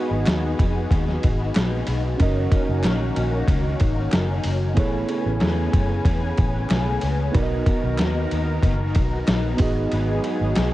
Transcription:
Already playing: G#3 B3 D#4 F#4 G#4 D#5
0.09 G#1 D#4 F#4 B4
0.25 D#2 G#3 D#4 F#4 B4, snare, clap, ride
0.58 F2 G#3 D#4 F#4 B4, kick, ride
0.73 D#4 F#4 B4
0.90 D#2 G#3 D#4 F#4 B4, kick, ride
1.06 D#4 F#4 B4, snare
1.23 G#1, kick, ride
1.38 D#4 F#4 B4
1.54 A#1 G#3 D#4 F#4 B4, snare, clap, ride
1.86 B1 G#3 D#4 F#4 B4, open hi-hat, ride
2.17 F#1 D#3 F#3 A#3 C#4 D#4 F#4 A#4, kick, ride
2.22 D#5
2.51 F#3 C#4 D#4 A#4, kick, ride
2.67 F#1 C#4 D#4 A#4
2.83 A#1 F#3 C#4 D#4 A#4, snare, clap, ride
3.15 A#1 F#3 C#4 D#4 A#4, ride
3.31 C#4 D#4 A#4
3.47 C#2 F#3 C#4 D#4 A#4, kick, ride
3.62 C#4 D#4 A#4
3.80 G#1, kick, ride
3.95 C#4 D#4 A#4
4.12 F#1 F#3 C#4 D#4 A#4, snare, clap, ride
4.44 F#1 F#3 C#4 D#4 A#4, open hi-hat, ride
4.74 A1 C#3 A3 B3 C#4 E4 G#4 A4 B4 G#5, kick, ride
4.79 C#5
5.08 A3 C#4 G#4 B4, ride
5.23 A1 C#4 G#4 B4
5.40 E2 A3 C#4 G#4 B4, snare, clap, ride
5.72 F#2 A3 C#4 G#4 B4, kick, ride
5.89 C#4 G#4 B4
6.05 E2 A3 C#4 G#4 B4, kick, ride
6.21 C#4 G#4 B4
6.37 A1, kick, ride
6.53 C#4 G#4 B4
6.69 B1 A3 C#4 G#4 B4, snare, clap, ride
7.01 C#2 A3 C#4 G#4 B4, open hi-hat, ride
7.32 B1 D#3 B3 D#4 F#4 A#4, kick, ride
7.36 A#4 D5
7.43 D#5
7.66 B3 D#4 F#4 A#4, kick, ride
7.82 B1 D#4 F#4 A#4
7.98 D#2 B3 D#4 F#4 A#4, snare, clap, ride
8.30 D#2 B3 D#4 F#4 A#4, ride
8.46 D#4 F#4 A#4
8.62 F#1 B3 D#4 F#4 A#4, kick, ride
8.78 D#4 F#4 A#4
8.95 B1, kick, ride
9.11 D#4 F#4 A#4
9.27 A#1 B3 D#4 F#4 A#4, snare, clap, ride
9.57 G#1 F#3 G#3 B3 D#4 F#4 G#4, kick, open hi-hat, ride
9.61 F#4 B4 D#5
9.91 G#1 G#3 D#4 F#4 B4, ride
10.23 G#3 D#4 F#4 B4, ride
10.39 G#1 D#4 F#4 B4
10.55 B1 G#3 D#4 F#4 B4, snare, clap, ride

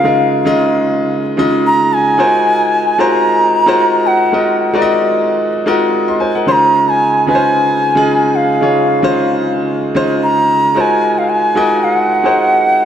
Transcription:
Already playing: C#3 G#3 D#4 F4 A#4 C5 F5
0.03 C#3 G#3 D#4 F4 A#4
0.45 C#3 G#3 D#4 F4 D#5
1.37 C#3 G#3 D#4 F4 D#5
1.67 A#5
1.93 G#5
2.18 G#3 D#4 F4 F#4 A#4 C5
2.98 G#3 D#4 F4 F#4 A#4 C5 A#5
3.66 G#3 D#4 F4 F#4 A#4 C5
4.07 F#5
4.32 G#3 D#4 F4 F#4 A#4 D#5
4.73 G#3 D#4 F4 F#4 A#4 D5
4.82 D#5
5.66 G#3 D#4 F4 F#4 A#4 D#5
6.08 D#5 C6
6.20 C5 G#5
6.35 A#4 F#5
6.46 C#3 G#3 D#4 F4 C5 C6
6.52 A#5
6.89 G#5
7.27 C#3 G#3 D#4 F4 B4 G#5
7.35 C5
7.95 C#3 G#3 D#4 F4 G#4
8.36 F5
8.61 C#3 G#3 D#4 F4 C#5
9.02 C#3 G#3 D#4 F4 C5
9.95 C#3 G#3 D#4 F4 C5
10.23 A#5
10.75 G#3 D#4 F4 F#4 A#4 C5 A#5
10.80 G#5
11.18 F5
11.30 G#5
11.55 G#3 D#4 F4 F#4 A#4 D#5
11.84 F5
11.97 F#5
12.23 G#3 D#4 F#4 G#4 A#4 C5

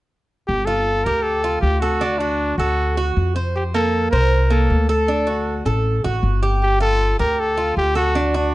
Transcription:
0.47 G1 G4
0.65 F4 A4
1.04 D2 G4 A#4
1.22 A4
1.44 F4
1.61 D2 G4
1.80 F#4 A4
2.01 D4
2.19 D4 F#4
2.58 D2 F#4 A4
2.97 F#4
3.17 F2
3.36 C5
3.56 G4
3.74 A#3 A4
4.11 C2 A#4 C5
4.50 A#3 A4
4.70 D2
4.89 A4
5.08 D4
5.27 F#4
5.65 A1 A4
6.04 A1 F#4
6.23 G1
6.43 G4
6.63 G4
6.80 F4 A4
7.19 D2 G4 A#4
7.40 A4
7.57 F4
7.77 D2 G4
7.95 F#4 A4
8.15 D4
8.34 D4 F#4

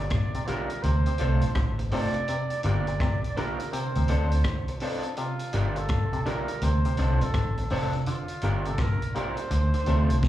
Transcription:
Already playing: D5
0.10 A#1, kick, cross-stick, closed hi-hat
0.34 C3, closed hi-hat
0.47 D3 G3 D4 F4 G4 A#4, closed hi-hat
0.70 muted clean electric guitar stroke, closed hi-hat
0.83 D2 C3 C5, closed hi-hat
1.06 C3, closed hi-hat
1.18 C2 D3 A3 C4 D4 F4 A4 C5, closed hi-hat
1.41 A#1, closed hi-hat
1.55 A1 D3, kick, cross-stick, closed hi-hat
1.79 F4 C5, muted clean electric guitar stroke, closed hi-hat
1.91 F1 C3 A3 C4 D4 F4 A4 C5 D5, open hi-hat
2.14 closed hi-hat
2.28 C3, closed hi-hat
2.50 closed hi-hat
2.63 G1 D3 A#3 D4 F4 G4 A#4 D5, closed hi-hat
2.87 A#2, closed hi-hat
3.00 A#1 C3, kick, cross-stick, closed hi-hat
3.24 closed hi-hat
3.37 D3 A#3 D4 F4 G4 A#4, closed hi-hat
3.60 G4 A#4, muted clean electric guitar stroke, closed hi-hat
3.72 C3 C5, closed hi-hat
3.95 D2 C3, closed hi-hat
4.08 D2 D3 F3 C4 D4 F4 A4 C5, closed hi-hat
4.32 closed hi-hat
4.44 kick, cross-stick, closed hi-hat
4.68 F4 C5, muted clean electric guitar stroke, closed hi-hat
4.80 F3 C4 D4 F4 A4 C5, open hi-hat
5.03 closed hi-hat
5.17 C3 F4, closed hi-hat
5.39 closed hi-hat
5.53 G1 D3 G3 D4 F4 G4 A#4, closed hi-hat
5.76 A#2 A4, closed hi-hat
5.88 A#1, kick, cross-stick, closed hi-hat
6.13 C3, closed hi-hat
6.26 D3 G3 D4 F4 G4 A#4, closed hi-hat
6.48 G4 A#4, muted clean electric guitar stroke, closed hi-hat
6.62 D2 C3 C5, closed hi-hat
6.85 C3, closed hi-hat
6.97 C2 D3 F3 C4 D4 F4 A4 C5, closed hi-hat
7.21 A#1 A4, closed hi-hat
7.34 A1 D3, kick, cross-stick, closed hi-hat
7.57 F4 C5, muted clean electric guitar stroke, closed hi-hat
7.70 F1 C3 F3 C4 D4 F4 A4 C5, open hi-hat
7.93 closed hi-hat
8.06 D3 F4, closed hi-hat
8.28 closed hi-hat
8.41 G1 A#2 G3 D4 F4 G4 A#4, closed hi-hat
8.65 C3 A4, closed hi-hat
8.78 A#1 D3 A#4, kick, cross-stick, closed hi-hat
9.02 closed hi-hat
9.14 A#2 G3 D4 F4 G4 A#4 C5, closed hi-hat
9.37 G4 A#4, muted clean electric guitar stroke, closed hi-hat
9.51 D2 D3, closed hi-hat
9.74 D3, closed hi-hat
9.86 D2 C3 A3 C4 D4 F4 A4 C5, closed hi-hat
10.10 C2, closed hi-hat
10.23 A1, kick, snare

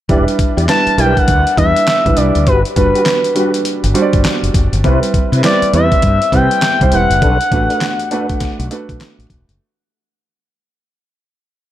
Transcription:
0.09 E1 G3 D4 E4 G4 B4 D5, kick, closed hi-hat
0.28 closed hi-hat
0.39 muted fretless electric bass stroke, kick, closed hi-hat
0.57 E2 E4 G4 D5, closed hi-hat
0.68 G3 D4 E4 B4 A5, snare, clap, closed hi-hat
0.87 muted fretless electric bass stroke, closed hi-hat
0.98 B1 G3 D4 E4 G4 A#4 D5 G5, closed hi-hat
1.05 B4
1.17 F#5, kick, closed hi-hat
1.28 D2, kick, closed hi-hat
1.47 closed hi-hat
1.57 E2 G3 D4 E4 B4 E5, kick, closed hi-hat
1.76 closed hi-hat
1.87 snare, clap, closed hi-hat
2.06 B1 G3 D4 E4 B4, kick, closed hi-hat
2.17 C2 G3 D4 E4 B4 D5, closed hi-hat
2.35 D2, closed hi-hat
2.47 G1 F#4 G4 B4, kick, closed hi-hat
2.65 closed hi-hat
2.76 F#1 G3 D4 F#4 B4, kick, closed hi-hat
2.95 F#4 G4 B4, closed hi-hat
3.06 snare, clap, closed hi-hat
3.24 closed hi-hat
3.35 G3 D4 F#4 G4 B4, closed hi-hat
3.54 closed hi-hat
3.65 closed hi-hat
3.84 G1, closed hi-hat
3.94 G3 D4 F#4 C5, closed hi-hat
4.02 D5
4.13 G1, kick, closed hi-hat
4.25 snare, clap, closed hi-hat
4.43 F#1, closed hi-hat
4.54 F#1, kick, closed hi-hat
4.73 G1, closed hi-hat
4.84 C2 G3 C4 E4 B4, kick, closed hi-hat
5.03 closed hi-hat
5.14 muted fretless electric bass stroke, kick, closed hi-hat
5.32 C3 C4 E4 B4, closed hi-hat
5.43 G3 C4 E4 B4 D5, snare, clap, closed hi-hat
5.62 muted fretless electric bass stroke, closed hi-hat
5.73 E2 G3 C4 E4 B4 E5, closed hi-hat
5.92 kick, closed hi-hat
6.02 G2, kick, closed hi-hat
6.22 closed hi-hat
6.32 C3 G3 C4 E4 B4 G5, kick, closed hi-hat
6.51 closed hi-hat
6.62 snare, clap, closed hi-hat
6.81 C2 G3 C4 E4 C5, kick, closed hi-hat
6.92 E1 G3 C4 E4 B4 F#5, closed hi-hat
7.10 F#1, closed hi-hat
7.21 B1 D4 A4 B4, kick, closed hi-hat
7.41 closed hi-hat
7.52 A1 A3 D4 F#4 B4, kick, closed hi-hat
7.70 D4 A4 B4, closed hi-hat
7.81 snare, clap, closed hi-hat
7.99 closed hi-hat
8.11 A3 D4 F#4 A4 B4, closed hi-hat
8.29 kick, closed hi-hat
8.40 kick, snare, closed hi-hat
8.59 B1, closed hi-hat
8.71 A3 D4 F#4 B4, closed hi-hat
8.89 B1, kick, closed hi-hat
9.01 snare, clap, closed hi-hat
9.19 A1, closed hi-hat
9.30 E1, kick, closed hi-hat
9.49 F#1, closed hi-hat

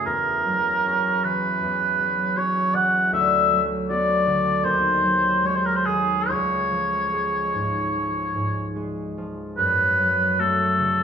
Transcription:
Already playing: C#4 F#4
0.06 E2 A#4
0.46 F#3
0.85 C#4 F#4
1.24 E3 B4
1.63 E2
2.00 F#3
2.36 C#4 F#4 C#5
2.74 E3 F#5
3.13 D2 E5
3.51 F#3
3.89 B3 F#4 D5
4.26 D3
4.64 D#2 C5
5.03 F#3
5.43 G#3 G#4 C#5
5.55 C5
5.65 A#4
5.76 C5
5.86 D#3 G#4
6.29 C#2 C#5
6.72 F3
7.13 G#3 G#4
7.54 G#2
7.96 F3
8.36 G#2
8.76 G#3 G#4
9.18 F3
9.58 F#2 B4
9.98 F#3
10.39 A3 F#4 A4
10.79 C#3

